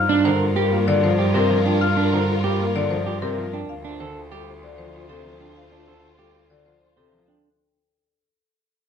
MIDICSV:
0, 0, Header, 1, 8, 480
1, 0, Start_track
1, 0, Tempo, 312500
1, 2783, Time_signature, 6, 2, 24, 8
1, 13650, End_track
2, 0, Start_track
2, 0, Title_t, "Celesta"
2, 0, Program_c, 0, 8
2, 0, Note_on_c, 0, 89, 77
2, 215, Note_off_c, 0, 89, 0
2, 2783, Note_on_c, 0, 89, 66
2, 3095, Note_off_c, 0, 89, 0
2, 13650, End_track
3, 0, Start_track
3, 0, Title_t, "Marimba"
3, 0, Program_c, 1, 12
3, 0, Note_on_c, 1, 77, 77
3, 217, Note_off_c, 1, 77, 0
3, 389, Note_on_c, 1, 72, 66
3, 697, Note_off_c, 1, 72, 0
3, 866, Note_on_c, 1, 70, 64
3, 1176, Note_off_c, 1, 70, 0
3, 1349, Note_on_c, 1, 74, 90
3, 1593, Note_on_c, 1, 72, 73
3, 1657, Note_off_c, 1, 74, 0
3, 1898, Note_off_c, 1, 72, 0
3, 2077, Note_on_c, 1, 70, 91
3, 2380, Note_off_c, 1, 70, 0
3, 2553, Note_on_c, 1, 79, 68
3, 2787, Note_on_c, 1, 77, 75
3, 2858, Note_off_c, 1, 79, 0
3, 3096, Note_off_c, 1, 77, 0
3, 3265, Note_on_c, 1, 72, 59
3, 3576, Note_off_c, 1, 72, 0
3, 3748, Note_on_c, 1, 70, 55
3, 4057, Note_off_c, 1, 70, 0
3, 4234, Note_on_c, 1, 74, 79
3, 4465, Note_on_c, 1, 72, 62
3, 4539, Note_off_c, 1, 74, 0
3, 4776, Note_off_c, 1, 72, 0
3, 4949, Note_on_c, 1, 70, 73
3, 5257, Note_off_c, 1, 70, 0
3, 5430, Note_on_c, 1, 79, 62
3, 5671, Note_on_c, 1, 77, 73
3, 5738, Note_off_c, 1, 79, 0
3, 5978, Note_off_c, 1, 77, 0
3, 6144, Note_on_c, 1, 72, 56
3, 6456, Note_off_c, 1, 72, 0
3, 6631, Note_on_c, 1, 69, 56
3, 6938, Note_off_c, 1, 69, 0
3, 7113, Note_on_c, 1, 74, 67
3, 7346, Note_on_c, 1, 72, 64
3, 7419, Note_off_c, 1, 74, 0
3, 7656, Note_off_c, 1, 72, 0
3, 7820, Note_on_c, 1, 69, 69
3, 8134, Note_off_c, 1, 69, 0
3, 8302, Note_on_c, 1, 79, 60
3, 8545, Note_on_c, 1, 77, 65
3, 8615, Note_off_c, 1, 79, 0
3, 8856, Note_off_c, 1, 77, 0
3, 9028, Note_on_c, 1, 72, 49
3, 9337, Note_off_c, 1, 72, 0
3, 9508, Note_on_c, 1, 69, 49
3, 9817, Note_off_c, 1, 69, 0
3, 9986, Note_on_c, 1, 74, 71
3, 10226, Note_on_c, 1, 72, 54
3, 10296, Note_off_c, 1, 74, 0
3, 10536, Note_off_c, 1, 72, 0
3, 10713, Note_on_c, 1, 69, 64
3, 11018, Note_off_c, 1, 69, 0
3, 11187, Note_on_c, 1, 79, 51
3, 11497, Note_off_c, 1, 79, 0
3, 13650, End_track
4, 0, Start_track
4, 0, Title_t, "Violin section"
4, 0, Program_c, 2, 48
4, 0, Note_on_c, 2, 65, 71
4, 0, Note_on_c, 2, 70, 73
4, 5359, Note_off_c, 2, 70, 0
4, 5360, Note_off_c, 2, 65, 0
4, 5661, Note_on_c, 2, 72, 64
4, 5662, Note_on_c, 2, 65, 63
4, 11120, Note_off_c, 2, 72, 0
4, 11121, Note_off_c, 2, 65, 0
4, 13650, End_track
5, 0, Start_track
5, 0, Title_t, "Clean electric guitar"
5, 0, Program_c, 3, 27
5, 143, Note_on_c, 3, 62, 97
5, 382, Note_on_c, 3, 70, 63
5, 455, Note_off_c, 3, 62, 0
5, 695, Note_off_c, 3, 70, 0
5, 861, Note_on_c, 3, 67, 88
5, 1174, Note_off_c, 3, 67, 0
5, 1822, Note_on_c, 3, 67, 73
5, 2062, Note_on_c, 3, 72, 70
5, 2135, Note_off_c, 3, 67, 0
5, 2375, Note_off_c, 3, 72, 0
5, 2544, Note_on_c, 3, 62, 66
5, 2855, Note_off_c, 3, 62, 0
5, 3023, Note_on_c, 3, 62, 85
5, 3264, Note_on_c, 3, 70, 65
5, 3335, Note_off_c, 3, 62, 0
5, 3575, Note_off_c, 3, 70, 0
5, 3746, Note_on_c, 3, 67, 75
5, 4056, Note_off_c, 3, 67, 0
5, 4707, Note_on_c, 3, 67, 66
5, 4943, Note_off_c, 3, 67, 0
5, 4949, Note_on_c, 3, 72, 60
5, 5257, Note_off_c, 3, 72, 0
5, 5428, Note_on_c, 3, 62, 63
5, 5737, Note_off_c, 3, 62, 0
5, 5907, Note_on_c, 3, 62, 76
5, 6151, Note_on_c, 3, 69, 64
5, 6216, Note_off_c, 3, 62, 0
5, 6458, Note_off_c, 3, 69, 0
5, 6628, Note_on_c, 3, 67, 69
5, 6937, Note_off_c, 3, 67, 0
5, 7825, Note_on_c, 3, 72, 56
5, 8136, Note_off_c, 3, 72, 0
5, 8306, Note_on_c, 3, 62, 56
5, 8616, Note_off_c, 3, 62, 0
5, 8784, Note_on_c, 3, 62, 63
5, 9023, Note_on_c, 3, 69, 51
5, 9096, Note_off_c, 3, 62, 0
5, 9335, Note_off_c, 3, 69, 0
5, 9502, Note_on_c, 3, 67, 60
5, 9815, Note_off_c, 3, 67, 0
5, 10702, Note_on_c, 3, 72, 52
5, 11015, Note_off_c, 3, 72, 0
5, 11183, Note_on_c, 3, 62, 49
5, 11495, Note_off_c, 3, 62, 0
5, 13650, End_track
6, 0, Start_track
6, 0, Title_t, "Alto flute"
6, 0, Program_c, 4, 73
6, 150, Note_on_c, 4, 65, 42
6, 316, Note_off_c, 4, 65, 0
6, 385, Note_on_c, 4, 65, 44
6, 552, Note_off_c, 4, 65, 0
6, 631, Note_on_c, 4, 65, 53
6, 796, Note_off_c, 4, 65, 0
6, 872, Note_on_c, 4, 65, 59
6, 1036, Note_off_c, 4, 65, 0
6, 1108, Note_on_c, 4, 65, 68
6, 1274, Note_off_c, 4, 65, 0
6, 1338, Note_on_c, 4, 65, 72
6, 1507, Note_off_c, 4, 65, 0
6, 1581, Note_on_c, 4, 65, 69
6, 1750, Note_off_c, 4, 65, 0
6, 1818, Note_on_c, 4, 65, 69
6, 1988, Note_off_c, 4, 65, 0
6, 2059, Note_on_c, 4, 65, 76
6, 2228, Note_off_c, 4, 65, 0
6, 2298, Note_on_c, 4, 65, 71
6, 2468, Note_off_c, 4, 65, 0
6, 2543, Note_on_c, 4, 65, 76
6, 2711, Note_off_c, 4, 65, 0
6, 2782, Note_on_c, 4, 65, 69
6, 2950, Note_off_c, 4, 65, 0
6, 3019, Note_on_c, 4, 65, 75
6, 3188, Note_off_c, 4, 65, 0
6, 3258, Note_on_c, 4, 65, 65
6, 3428, Note_off_c, 4, 65, 0
6, 3502, Note_on_c, 4, 65, 64
6, 3670, Note_off_c, 4, 65, 0
6, 3748, Note_on_c, 4, 65, 61
6, 3914, Note_off_c, 4, 65, 0
6, 3984, Note_on_c, 4, 65, 64
6, 4152, Note_off_c, 4, 65, 0
6, 4229, Note_on_c, 4, 65, 56
6, 4395, Note_off_c, 4, 65, 0
6, 4469, Note_on_c, 4, 65, 54
6, 4635, Note_off_c, 4, 65, 0
6, 4709, Note_on_c, 4, 65, 44
6, 4875, Note_off_c, 4, 65, 0
6, 4949, Note_on_c, 4, 65, 42
6, 5115, Note_off_c, 4, 65, 0
6, 5191, Note_on_c, 4, 65, 34
6, 5356, Note_off_c, 4, 65, 0
6, 5666, Note_on_c, 4, 65, 30
6, 5833, Note_off_c, 4, 65, 0
6, 5909, Note_on_c, 4, 65, 39
6, 6075, Note_off_c, 4, 65, 0
6, 6146, Note_on_c, 4, 65, 36
6, 6313, Note_off_c, 4, 65, 0
6, 6394, Note_on_c, 4, 65, 45
6, 6558, Note_off_c, 4, 65, 0
6, 6635, Note_on_c, 4, 65, 46
6, 6799, Note_off_c, 4, 65, 0
6, 6863, Note_on_c, 4, 65, 57
6, 7031, Note_off_c, 4, 65, 0
6, 7101, Note_on_c, 4, 65, 53
6, 7270, Note_off_c, 4, 65, 0
6, 7341, Note_on_c, 4, 65, 60
6, 7510, Note_off_c, 4, 65, 0
6, 7586, Note_on_c, 4, 65, 60
6, 7753, Note_off_c, 4, 65, 0
6, 7819, Note_on_c, 4, 65, 70
6, 7989, Note_off_c, 4, 65, 0
6, 8062, Note_on_c, 4, 65, 61
6, 8230, Note_off_c, 4, 65, 0
6, 8306, Note_on_c, 4, 65, 59
6, 8473, Note_off_c, 4, 65, 0
6, 8544, Note_on_c, 4, 65, 59
6, 8712, Note_off_c, 4, 65, 0
6, 8782, Note_on_c, 4, 65, 62
6, 8950, Note_off_c, 4, 65, 0
6, 9023, Note_on_c, 4, 65, 60
6, 9191, Note_off_c, 4, 65, 0
6, 9263, Note_on_c, 4, 65, 47
6, 9431, Note_off_c, 4, 65, 0
6, 9509, Note_on_c, 4, 65, 48
6, 9675, Note_off_c, 4, 65, 0
6, 9739, Note_on_c, 4, 65, 57
6, 9909, Note_off_c, 4, 65, 0
6, 9987, Note_on_c, 4, 65, 49
6, 10153, Note_off_c, 4, 65, 0
6, 10223, Note_on_c, 4, 65, 44
6, 10391, Note_off_c, 4, 65, 0
6, 10465, Note_on_c, 4, 65, 36
6, 10632, Note_off_c, 4, 65, 0
6, 10706, Note_on_c, 4, 65, 38
6, 10873, Note_off_c, 4, 65, 0
6, 10941, Note_on_c, 4, 65, 28
6, 11110, Note_off_c, 4, 65, 0
6, 13650, End_track
7, 0, Start_track
7, 0, Title_t, "Grand piano"
7, 0, Program_c, 5, 0
7, 380, Note_on_c, 5, 50, 66
7, 694, Note_off_c, 5, 50, 0
7, 858, Note_on_c, 5, 55, 68
7, 1096, Note_on_c, 5, 58, 68
7, 1173, Note_off_c, 5, 55, 0
7, 1339, Note_on_c, 5, 50, 85
7, 1413, Note_off_c, 5, 58, 0
7, 1575, Note_on_c, 5, 53, 76
7, 1654, Note_off_c, 5, 50, 0
7, 1892, Note_off_c, 5, 53, 0
7, 2061, Note_on_c, 5, 48, 88
7, 2302, Note_on_c, 5, 53, 65
7, 2374, Note_off_c, 5, 48, 0
7, 2615, Note_off_c, 5, 53, 0
7, 3268, Note_on_c, 5, 50, 63
7, 3577, Note_off_c, 5, 50, 0
7, 3748, Note_on_c, 5, 55, 68
7, 3990, Note_on_c, 5, 58, 60
7, 4057, Note_off_c, 5, 55, 0
7, 4229, Note_on_c, 5, 50, 81
7, 4297, Note_off_c, 5, 58, 0
7, 4463, Note_on_c, 5, 53, 74
7, 4537, Note_off_c, 5, 50, 0
7, 4775, Note_off_c, 5, 53, 0
7, 4945, Note_on_c, 5, 48, 86
7, 5182, Note_on_c, 5, 53, 67
7, 5256, Note_off_c, 5, 48, 0
7, 5495, Note_off_c, 5, 53, 0
7, 6150, Note_on_c, 5, 50, 57
7, 6457, Note_off_c, 5, 50, 0
7, 6628, Note_on_c, 5, 55, 57
7, 6937, Note_off_c, 5, 55, 0
7, 7111, Note_on_c, 5, 50, 65
7, 7351, Note_on_c, 5, 53, 60
7, 7418, Note_off_c, 5, 50, 0
7, 7658, Note_off_c, 5, 53, 0
7, 7827, Note_on_c, 5, 48, 65
7, 8063, Note_on_c, 5, 53, 59
7, 8136, Note_off_c, 5, 48, 0
7, 8375, Note_off_c, 5, 53, 0
7, 9028, Note_on_c, 5, 50, 54
7, 9337, Note_off_c, 5, 50, 0
7, 9503, Note_on_c, 5, 55, 51
7, 9815, Note_off_c, 5, 55, 0
7, 9987, Note_on_c, 5, 50, 64
7, 10224, Note_on_c, 5, 53, 58
7, 10296, Note_off_c, 5, 50, 0
7, 10536, Note_off_c, 5, 53, 0
7, 10701, Note_on_c, 5, 48, 68
7, 10948, Note_on_c, 5, 53, 54
7, 11015, Note_off_c, 5, 48, 0
7, 11257, Note_off_c, 5, 53, 0
7, 13650, End_track
8, 0, Start_track
8, 0, Title_t, "Cello"
8, 0, Program_c, 6, 42
8, 0, Note_on_c, 6, 43, 73
8, 5505, Note_off_c, 6, 43, 0
8, 5670, Note_on_c, 6, 38, 65
8, 11269, Note_off_c, 6, 38, 0
8, 13650, End_track
0, 0, End_of_file